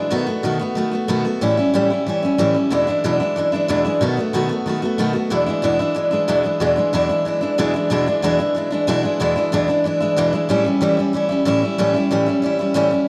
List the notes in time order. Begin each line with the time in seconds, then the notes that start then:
Already playing: E3 G#3 D4 E4
0.10 B2 D#3 A3 B3 F#4
0.27 A3 B3 F#4
0.43 B2 D#3 A3 B3 F#4
0.59 A3 B3 F#4
0.75 D#3 A3 B3 F#4
0.92 A3 B3 F#4
1.08 B2 D#3 A3 B3 F#4
1.25 A3 B3 F#4
1.41 A2 E3 G3 C#4 E4
1.57 G3 C#4 E4
1.74 A2 E3 G3 C#4 E4
1.90 G3 C#4 E4
2.07 E3 G3 C#4 E4
2.23 G3 C#4 E4
2.38 A2 E3 G3 C#4 E4
2.54 G3 C#4 E4
2.70 E2 B2 E3 G#3 D4 E4
2.87 E3 G#3 D4 E4
3.04 E2 B2 E3 G#3 D4 E4
3.20 E3 G#3 D4 E4
3.36 E3 G#3 D4 E4
3.52 E3 G#3 D4 E4
3.68 E2 B2 E3 G#3 D4 E4
3.85 E3 G#3 D4 E4
4.01 B2 D#3 A3 B3 F#4
4.17 A3 B3 F#4
4.33 B2 D#3 A3 B3 F#4
4.49 A3 B3 F#4
4.66 D#3 A3 B3 F#4
4.82 A3 B3 F#4
4.98 B2 D#3 A3 B3 F#4
5.13 A3 B3 F#4
5.30 E2 B2 E3 G#3 D4 E4
5.46 E3 G#3 D4 E4
5.62 E2 B2 E3 G#3 D4 E4
5.79 E3 G#3 D4 E4
5.95 E3 G#3 D4 E4
6.11 E3 G#3 D4 E4
6.28 E2 B2 E3 G#3 D4 E4
6.43 E3 G#3 D4 E4
6.60 E2 B2 E3 G#3 D4 E4
6.76 E3 G#3 D4 E4
6.93 E2 B2 E3 G#3 D4 E4
7.09 E3 G#3 D4 E4
7.25 E3 G#3 D4 E4
7.41 E3 G#3 D4 E4
7.58 E2 B2 E3 G#3 D4 E4
7.74 E3 G#3 D4 E4
7.90 E2 B2 E3 G#3 D4 E4
8.06 E3 G#3 D4 E4
8.22 E2 B2 E3 G#3 D4 E4
8.39 E3 G#3 D4 E4
8.55 E3 G#3 D4 E4
8.71 E3 G#3 D4 E4
8.87 E2 B2 E3 G#3 D4 E4
9.03 E3 G#3 D4 E4
9.20 E2 B2 E3 G#3 D4 E4
9.36 E3 G#3 D4 E4
9.52 E2 B2 E3 G#3 D4 E4
9.68 E3 G#3 D4 E4
9.84 E3 G#3 D4 E4
10.00 E3 G#3 D4 E4
10.17 E2 B2 E3 G#3 D4 E4
10.33 E3 G#3 D4 E4
10.49 A2 E3 G3 C#4 E4
10.66 G3 C#4
10.81 A2 E3 G3 C#4 E4
10.97 G3 C#4 E4
11.13 E3 G3 C#4 E4
11.29 G3 C#4 E4
11.45 A2 E3 G3 C#4 E4
11.62 G3 C#4 E4
11.78 A2 E3 G3 C#4 E4
11.94 G3 C#4 E4
12.11 A2 E3 G3 C#4 E4
12.26 G3 C#4 E4
12.42 E3 G3 C#4 E4
12.59 G3 C#4 E4
12.74 A2 E3 G3 C#4 E4
12.91 G3 C#4 E4